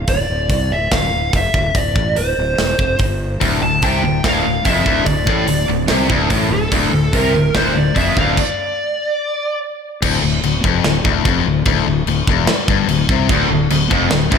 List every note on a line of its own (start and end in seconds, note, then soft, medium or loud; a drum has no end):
0.08 0.28 D1 medium
0.08 0.73 D5 loud
0.08 kick loud
0.08 open hi-hat medium
0.29 0.49 D1 medium
0.49 0.69 C2 medium
0.49 kick loud
0.49 open hi-hat medium
0.71 0.91 D1 medium
0.71 0.93 E5 loud
0.92 1.11 D1 loud
0.92 1.36 F5 medium
0.92 kick loud
0.92 snare loud
0.92 open hi-hat soft
1.14 1.33 D1 medium
1.33 1.53 F1 medium
1.33 1.78 E5 loud
1.33 kick loud
1.33 open hi-hat soft
1.54 1.74 D1 medium
1.54 kick loud
1.75 1.94 D1 medium
1.75 2.17 D5 medium
1.75 kick loud
1.75 open hi-hat medium
1.96 2.15 A1 loud
1.96 kick loud
2.16 2.36 D1 medium
2.16 2.96 C5 medium
2.16 open hi-hat medium
2.38 2.57 D1 medium
2.58 2.78 E1 medium
2.58 snare loud
2.58 open hi-hat medium
2.79 2.98 F1 medium
2.79 kick loud
2.99 3.39 G1 medium
2.99 kick loud
2.99 open hi-hat medium
3.41 3.61 D1 medium
3.41 3.61 D2 loud
3.41 kick loud
3.41 open hi-hat medium
3.62 3.82 D1 medium
3.62 3.79 D2 medium
3.62 3.83 A5 medium
3.82 4.02 C2 medium
3.82 4.03 C3 loud
3.82 4.22 G5 loud
3.82 kick loud
3.82 open hi-hat medium
4.04 4.23 D1 medium
4.04 4.21 D2 medium
4.24 4.43 D1 loud
4.24 4.45 D2 loud
4.24 4.64 F5 medium
4.24 kick loud
4.24 snare loud
4.24 open hi-hat medium
4.46 4.65 D1 medium
4.46 4.62 D2 medium
4.65 4.85 F1 medium
4.65 4.85 F2 loud
4.65 5.04 E5 medium
4.65 kick loud
4.65 open hi-hat medium
4.86 5.06 D1 medium
4.86 5.05 D2 loud
4.86 kick loud
5.06 5.26 D1 medium
5.06 5.23 D2 medium
5.06 5.65 D5 medium
5.06 kick loud
5.06 open hi-hat soft
5.26 5.47 A1 medium
5.26 5.47 A2 medium
5.26 kick loud
5.48 5.68 D1 medium
5.48 5.65 D2 medium
5.48 open hi-hat medium
5.69 5.89 D1 medium
5.69 5.86 D2 medium
5.88 6.09 C2 loud
5.88 6.10 C3 medium
5.88 snare loud
5.88 open hi-hat medium
6.10 6.30 D1 medium
6.10 6.30 D2 loud
6.10 kick loud
6.30 6.50 A1 medium
6.30 6.51 A2 loud
6.30 kick loud
6.30 open hi-hat medium
6.51 6.71 D1 medium
6.51 6.68 D2 medium
6.51 7.11 A4 medium
6.72 6.92 D1 medium
6.72 6.92 D2 loud
6.72 kick loud
6.72 open hi-hat medium
6.92 7.12 D1 medium
6.92 7.10 D2 medium
7.13 7.33 C2 loud
7.13 7.34 C3 loud
7.13 7.55 A#4 medium
7.13 kick loud
7.13 open hi-hat medium
7.34 7.54 D1 medium
7.34 7.51 D2 medium
7.55 7.74 D1 loud
7.55 7.73 D2 loud
7.55 7.77 C5 medium
7.55 kick loud
7.55 snare loud
7.55 open hi-hat medium
7.75 7.95 D1 medium
7.75 7.92 D2 medium
7.75 7.96 D5 medium
7.95 8.16 F1 loud
7.95 8.16 F2 loud
7.95 8.18 E5 medium
7.95 kick loud
7.95 open hi-hat medium
8.17 8.36 D1 medium
8.17 8.37 D2 loud
8.17 8.39 F5 loud
8.17 kick loud
8.37 9.58 D5 loud
8.37 kick loud
8.37 crash medium
10.02 10.22 D1 medium
10.02 10.22 D2 loud
10.02 kick loud
10.02 crash loud
10.02 china medium
10.22 10.42 D1 medium
10.22 10.40 D2 medium
10.43 10.63 D1 medium
10.43 10.60 D2 medium
10.43 china medium
10.64 10.83 F1 medium
10.64 10.84 F2 loud
10.64 kick loud
10.84 11.04 D1 medium
10.84 11.01 D2 medium
10.84 snare loud
10.84 china medium
11.04 11.24 D1 medium
11.04 11.25 D2 loud
11.04 kick loud
11.25 11.45 F1 loud
11.25 11.46 F2 loud
11.25 kick loud
11.25 china medium
11.46 11.65 D1 medium
11.46 11.63 D2 medium
11.65 11.85 D1 medium
11.65 11.86 D2 loud
11.65 kick loud
11.65 china medium
11.87 12.06 D1 medium
11.87 12.04 D2 medium
12.06 12.26 D1 medium
12.06 12.24 D2 medium
12.06 china medium
12.27 12.47 E1 loud
12.27 12.48 E2 loud
12.27 kick loud
12.47 snare loud
12.47 china medium
12.68 12.88 G1 loud
12.68 12.89 G2 loud
12.68 kick loud
12.88 13.08 D1 medium
12.88 13.06 D2 medium
12.88 china medium
13.09 13.28 C2 loud
13.09 13.30 C3 loud
13.09 kick loud
13.29 13.49 D1 medium
13.29 13.50 D2 loud
13.29 kick loud
13.29 china medium
13.50 13.70 D1 medium
13.50 13.67 D2 medium
13.70 13.90 D1 medium
13.70 13.88 D2 medium
13.70 china medium
13.90 14.10 F1 loud
13.90 14.11 F2 loud
13.90 kick loud
14.11 14.31 D1 medium
14.11 14.28 D2 medium
14.11 snare loud
14.11 china medium
14.31 14.38 D1 loud
14.31 14.38 D2 loud
14.31 kick loud